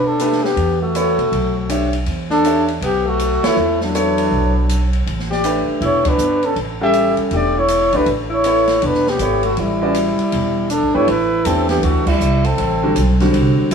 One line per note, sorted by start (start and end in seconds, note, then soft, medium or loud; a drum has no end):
0.00 0.53 B2 medium
0.05 0.45 D4 medium
0.05 0.46 A4 medium
0.19 0.41 A3 medium
0.19 0.41 D4 medium
0.19 0.41 G4 medium
0.19 0.41 B4 medium
0.19 hi-hat pedal medium
0.19 ride medium
0.32 snare soft
0.43 0.80 B3 medium
0.43 0.81 G4 medium
0.43 snare soft
0.56 1.13 E2 medium
0.56 ride medium
0.82 1.90 A3 medium
0.82 1.90 F#4 medium
0.95 1.16 B3 medium
0.95 1.16 E4 medium
0.95 1.17 A4 medium
0.95 1.16 C#5 medium
0.95 hi-hat pedal medium
0.95 ride medium
1.18 1.30 B2 medium
1.18 ride soft
1.32 2.03 B1 medium
1.32 ride medium
1.69 1.91 D4 medium
1.69 1.90 G4 medium
1.69 1.91 C#5 medium
1.69 1.91 E5 medium
1.69 hi-hat pedal medium
1.69 ride medium
1.93 ride soft
2.06 2.78 E2 medium
2.06 ride soft
2.30 2.65 D4 medium
2.30 2.66 A4 loud
2.30 snare soft
2.44 2.66 D4 medium
2.44 2.66 G4 medium
2.44 2.66 C#5 medium
2.44 2.66 E5 medium
2.44 hi-hat pedal soft
2.44 ride medium
2.68 ride soft
2.81 3.38 B1 medium
2.81 3.08 B3 medium
2.81 3.10 G4 medium
2.81 ride medium
3.06 3.46 A3 medium
3.06 3.48 F#4 loud
3.19 hi-hat pedal medium
3.19 ride medium
3.43 3.82 A3 medium
3.43 3.55 B3 medium
3.43 3.55 E4 medium
3.43 3.82 E4 medium
3.43 3.55 A4 medium
3.43 3.56 C#5 medium
3.43 muted upright bass stroke soft
3.43 snare medium
3.43 ride medium
3.56 4.27 E2 medium
3.81 4.90 F#3 medium
3.81 4.90 D4 medium
3.81 snare soft
3.95 4.51 B3 medium
3.95 4.51 E4 medium
3.95 4.51 A4 medium
3.95 4.51 C#5 medium
3.95 hi-hat pedal medium
3.95 ride medium
4.18 ride medium
4.31 5.03 B1 medium
4.69 hi-hat pedal medium
4.69 ride medium
4.93 ride soft
5.06 5.64 A1 medium
5.06 ride medium
5.19 snare soft
5.31 5.65 G4 medium
5.31 5.66 D5 medium
5.31 snare soft
5.44 6.01 A3 medium
5.44 6.01 D4 medium
5.44 6.01 G4 medium
5.44 6.01 B4 medium
5.44 hi-hat pedal medium
5.44 ride medium
5.68 muted upright bass stroke soft
5.81 6.16 E1 medium
5.81 6.07 E4 medium
5.81 ride medium
5.85 6.10 C#5 medium
6.05 6.45 D4 medium
6.05 6.47 B4 medium
6.05 kick medium
6.05 ride medium
6.18 6.53 G1 medium
6.18 hi-hat pedal medium
6.43 6.57 C#4 medium
6.43 6.58 A4 medium
6.43 ride soft
6.56 7.14 A1 medium
6.56 ride medium
6.81 7.29 G3 medium
6.81 7.29 C#4 medium
6.81 7.17 G4 medium
6.81 7.30 A4 medium
6.81 7.17 E5 loud
6.81 7.30 F#5 medium
6.93 hi-hat pedal soft
6.93 ride medium
7.17 muted upright bass stroke soft
7.17 ride soft
7.31 7.89 E1 medium
7.31 7.54 A3 medium
7.31 7.54 D4 medium
7.31 7.54 G4 medium
7.31 7.60 G4 medium
7.31 7.54 A4 medium
7.31 ride medium
7.36 7.61 D5 medium
7.58 7.95 E4 medium
7.58 7.98 C#5 loud
7.68 hi-hat pedal medium
7.68 ride medium
7.93 8.06 A#1 medium
7.93 8.06 A3 medium
7.93 8.07 D4 medium
7.93 8.06 D4 medium
7.93 8.06 G4 medium
7.93 8.09 B4 medium
7.93 8.06 D5 medium
7.93 ride soft
8.06 8.78 A1 medium
8.06 ride medium
8.30 8.84 E4 medium
8.34 8.88 C#5 medium
8.44 8.66 B3 medium
8.44 8.67 E4 medium
8.44 8.67 A4 medium
8.44 8.67 C#5 medium
8.44 hi-hat pedal soft
8.44 ride medium
8.67 snare soft
8.67 ride soft
8.82 9.17 E1 medium
8.82 9.10 D4 medium
8.82 ride medium
8.86 9.11 B4 medium
8.94 snare soft
9.07 9.44 B3 medium
9.07 9.45 G4 medium
9.07 snare soft
9.19 9.54 G#1 medium
9.19 9.42 B3 medium
9.19 9.42 E4 medium
9.19 9.42 A4 medium
9.19 9.42 C#5 medium
9.19 hi-hat pedal medium
9.19 ride medium
9.43 9.60 A3 medium
9.43 9.61 F#4 medium
9.43 ride soft
9.57 10.15 A1 medium
9.57 10.70 G3 medium
9.57 10.71 E4 medium
9.57 ride medium
9.82 9.94 C#4 medium
9.82 9.94 F#4 medium
9.82 9.94 B4 medium
9.82 9.95 D5 medium
9.94 hi-hat pedal soft
9.94 ride medium
10.18 muted upright bass stroke soft
10.18 ride soft
10.32 10.79 E1 medium
10.32 ride medium
10.70 10.97 D4 medium
10.70 10.96 A4 medium
10.70 hi-hat pedal medium
10.70 ride medium
10.83 10.94 A1 medium
10.94 11.07 G1 medium
10.94 11.07 A3 medium
10.94 11.07 D4 medium
10.94 11.09 E4 medium
10.94 11.07 G4 medium
10.94 11.07 B4 medium
10.94 11.11 C#5 medium
11.07 11.44 A1 medium
11.07 11.49 E4 medium
11.07 11.47 B4 loud
11.07 ride medium
11.45 11.82 E2 medium
11.45 12.03 E3 medium
11.45 12.02 A3 medium
11.45 11.69 C4 medium
11.45 12.03 D4 medium
11.45 12.03 G4 medium
11.45 11.69 A4 medium
11.45 hi-hat pedal medium
11.45 ride medium
11.69 11.85 B3 medium
11.69 11.85 G4 medium
11.69 snare soft
11.69 ride soft
11.83 12.05 D2 medium
11.83 12.08 A3 medium
11.83 12.10 F#4 medium
11.83 ride medium
12.06 12.47 G3 medium
12.06 12.47 E4 medium
12.06 muted upright bass stroke soft
12.06 kick medium
12.06 crash medium
12.20 12.57 C2 medium
12.20 hi-hat pedal soft
12.44 13.20 C4 medium
12.44 13.20 A4 medium
12.44 ride soft
12.58 12.95 A1 medium
12.58 ride medium
12.83 12.95 D3 medium
12.83 12.95 G3 medium
12.83 12.95 C4 medium
12.83 12.95 F#4 medium
12.96 13.33 B1 medium
12.96 hi-hat pedal medium
12.96 ride medium
13.20 13.69 D3 medium
13.20 13.69 G3 medium
13.20 13.69 C4 medium
13.20 13.69 F#4 medium
13.20 snare soft
13.20 ride soft
13.34 13.56 C2 medium
13.34 ride medium
13.58 muted upright bass stroke soft
13.71 13.74 G1 medium
13.71 hi-hat pedal medium
13.71 ride medium